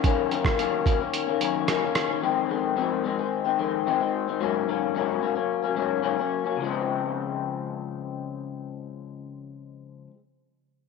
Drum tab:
HH |x-x-x-x-x-x-x-x-|----------------|----------------|----------------|
SD |---r--------r-r-|----------------|----------------|----------------|
BD |o--o--o---------|----------------|----------------|----------------|

HH |----------------|
SD |----------------|
BD |----------------|